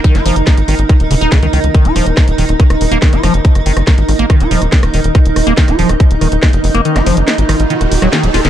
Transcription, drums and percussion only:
0.04 kick loud
0.04 closed hi-hat medium
0.15 snare soft
0.15 closed hi-hat medium
0.26 open hi-hat loud
0.36 closed hi-hat medium
0.47 kick loud
0.47 snare loud
0.47 closed hi-hat medium
0.57 closed hi-hat medium
0.68 open hi-hat loud
0.79 closed hi-hat medium
0.89 kick loud
0.89 closed hi-hat medium
1.00 closed hi-hat medium
1.11 open hi-hat loud
1.21 closed hi-hat medium
1.32 kick loud
1.32 snare loud
1.32 closed hi-hat medium
1.43 closed hi-hat medium
1.53 open hi-hat medium
1.64 closed hi-hat medium
1.74 kick loud
1.74 closed hi-hat medium
1.85 closed hi-hat medium
1.96 cross-stick soft
1.96 open hi-hat loud
2.06 closed hi-hat medium
2.17 kick loud
2.17 cross-stick medium
2.17 snare loud
2.17 closed hi-hat medium
2.28 closed hi-hat medium
2.38 open hi-hat medium
2.49 cross-stick soft
2.49 closed hi-hat medium
2.60 kick loud
2.60 closed hi-hat medium
2.70 cross-stick medium
2.70 closed hi-hat medium
2.81 open hi-hat loud
2.92 closed hi-hat medium
3.02 kick loud
3.02 cross-stick soft
3.02 snare loud
3.02 closed hi-hat medium
3.13 closed hi-hat medium
3.23 cross-stick medium
3.23 open hi-hat medium
3.34 closed hi-hat medium
3.45 kick loud
3.45 closed hi-hat medium
3.55 cross-stick soft
3.55 closed hi-hat medium
3.66 open hi-hat loud
3.77 cross-stick medium
3.77 closed hi-hat medium
3.87 kick loud
3.87 snare loud
3.87 closed hi-hat medium
3.98 closed hi-hat medium
4.09 cross-stick soft
4.09 open hi-hat medium
4.19 closed hi-hat medium
4.30 kick loud
4.30 cross-stick medium
4.30 closed hi-hat medium
4.40 closed hi-hat medium
4.51 open hi-hat loud
4.62 cross-stick soft
4.62 closed hi-hat medium
4.72 kick loud
4.72 snare loud
4.72 closed hi-hat medium
4.83 cross-stick medium
4.83 closed hi-hat medium
4.94 open hi-hat medium
5.04 closed hi-hat medium
5.15 kick loud
5.15 cross-stick soft
5.15 closed hi-hat medium
5.26 closed hi-hat medium
5.36 cross-stick medium
5.36 open hi-hat loud
5.47 closed hi-hat medium
5.57 kick loud
5.57 snare loud
5.57 closed hi-hat medium
5.68 cross-stick soft
5.68 closed hi-hat medium
5.79 open hi-hat medium
5.89 cross-stick medium
5.89 closed hi-hat medium
6.00 kick loud
6.00 closed hi-hat medium
6.11 closed hi-hat medium
6.21 cross-stick soft
6.21 open hi-hat loud
6.32 closed hi-hat medium
6.43 kick loud
6.43 cross-stick medium
6.43 snare loud
6.43 closed hi-hat medium
6.53 closed hi-hat medium
6.64 open hi-hat medium
6.75 cross-stick soft
6.75 closed hi-hat medium
6.85 closed hi-hat medium
6.96 cross-stick medium
6.96 snare soft
6.96 closed hi-hat medium
7.06 open hi-hat loud
7.17 closed hi-hat medium
7.28 cross-stick soft
7.28 snare loud
7.28 closed hi-hat medium
7.38 closed hi-hat medium
7.49 cross-stick medium
7.49 open hi-hat medium
7.60 closed hi-hat medium
7.70 closed hi-hat medium
7.81 cross-stick soft
7.81 closed hi-hat medium
7.92 open hi-hat loud
8.02 cross-stick medium
8.02 closed hi-hat medium
8.13 snare loud
8.13 closed hi-hat medium
8.23 closed hi-hat medium
8.34 snare medium
8.34 open hi-hat medium
8.45 snare medium
8.45 closed hi-hat medium

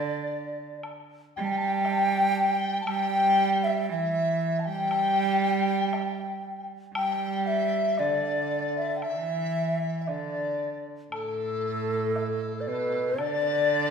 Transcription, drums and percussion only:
0.83 high woodblock soft
1.85 high woodblock soft
1.85 low woodblock soft
2.87 high woodblock medium
4.91 high woodblock soft
5.93 high woodblock soft
5.93 low woodblock soft
6.95 high woodblock medium
7.97 low woodblock soft
9.02 high woodblock soft
10.07 low woodblock soft
11.12 high woodblock medium
12.16 low woodblock soft
13.18 high woodblock soft

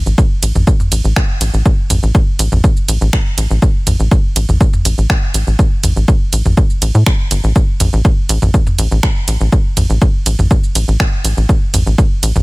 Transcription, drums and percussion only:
0.06 shaker soft
0.18 kick loud
0.18 shaker soft
0.43 closed hi-hat loud
0.43 ride medium
0.43 shaker medium
0.55 mid tom medium
0.55 shaker soft
0.67 kick loud
0.67 shaker soft
0.80 mid tom medium
0.80 shaker soft
0.92 closed hi-hat loud
0.92 ride medium
0.92 shaker medium
1.05 shaker soft
1.16 finger snap loud
1.16 kick loud
1.16 shaker soft
1.41 closed hi-hat loud
1.41 ride medium
1.41 shaker medium
1.54 shaker soft
1.66 kick loud
1.66 shaker soft
1.90 closed hi-hat loud
1.90 mid tom medium
1.90 ride medium
1.90 shaker medium
2.03 shaker soft
2.15 kick loud
2.15 shaker soft
2.39 closed hi-hat loud
2.39 ride medium
2.39 shaker medium
2.52 mid tom medium
2.52 shaker soft
2.64 kick loud
2.64 shaker soft
2.77 shaker soft
2.88 closed hi-hat loud
2.88 ride medium
2.88 shaker medium
3.01 shaker soft
3.13 finger snap loud
3.13 kick loud
3.13 shaker soft
3.38 closed hi-hat loud
3.38 ride medium
3.38 shaker medium
3.50 shaker soft
3.62 kick loud
3.62 shaker soft
3.87 closed hi-hat loud
3.87 mid tom medium
3.87 ride medium
3.87 shaker medium
4.00 shaker soft
4.11 kick loud
4.11 shaker soft
4.36 closed hi-hat loud
4.36 ride medium
4.36 shaker medium
4.49 mid tom medium
4.49 shaker soft
4.61 kick loud
4.61 shaker soft
4.73 mid tom medium
4.73 shaker soft
4.85 closed hi-hat loud
4.85 ride medium
4.85 shaker medium
4.98 shaker soft
5.10 finger snap loud
5.10 kick loud
5.10 shaker soft
5.34 closed hi-hat loud
5.34 ride medium
5.34 shaker medium
5.47 shaker soft
5.59 kick loud
5.59 shaker soft
5.84 closed hi-hat loud
5.84 mid tom medium
5.84 ride medium
5.84 shaker medium
5.96 shaker soft
6.08 kick loud
6.08 shaker soft
6.33 closed hi-hat loud
6.33 ride medium
6.33 shaker medium
6.45 mid tom medium
6.45 shaker soft
6.57 kick loud
6.57 shaker soft
6.70 shaker soft
6.82 closed hi-hat loud
6.82 ride medium
6.82 shaker medium
6.95 shaker soft
7.06 finger snap loud
7.06 kick loud
7.06 shaker soft
7.31 closed hi-hat loud
7.31 ride medium
7.31 shaker medium
7.44 shaker soft
7.56 kick loud
7.56 shaker soft
7.80 closed hi-hat loud
7.80 mid tom medium
7.80 ride medium
7.80 shaker medium
7.93 shaker soft
8.05 kick loud
8.05 shaker soft
8.29 closed hi-hat loud
8.29 ride medium
8.29 shaker medium
8.42 mid tom medium
8.42 shaker soft
8.54 kick loud
8.54 shaker soft
8.67 mid tom medium
8.67 shaker soft
8.79 closed hi-hat loud
8.79 ride medium
8.79 shaker medium
8.91 shaker soft
9.03 finger snap loud
9.03 kick loud
9.03 shaker soft
9.28 closed hi-hat loud
9.28 ride medium
9.28 shaker medium
9.40 shaker soft
9.52 kick loud
9.52 shaker soft
9.77 closed hi-hat loud
9.77 mid tom medium
9.77 ride medium
9.77 shaker medium
9.90 shaker soft
10.02 kick loud
10.02 shaker soft
10.26 closed hi-hat loud
10.26 ride medium
10.26 shaker medium
10.39 mid tom medium
10.39 shaker soft
10.51 kick loud
10.51 shaker soft
10.64 shaker soft
10.75 closed hi-hat loud
10.75 ride medium
10.75 shaker medium
10.88 shaker soft
11.00 finger snap loud
11.00 kick loud
11.00 shaker soft
11.25 closed hi-hat loud
11.25 ride medium
11.25 shaker medium
11.37 shaker soft
11.49 kick loud
11.49 shaker soft
11.74 closed hi-hat loud
11.74 mid tom medium
11.74 ride medium
11.74 shaker medium
11.87 shaker soft
11.98 kick loud
11.98 shaker soft
12.23 closed hi-hat loud
12.23 ride medium
12.23 shaker medium
12.36 mid tom medium
12.36 shaker soft

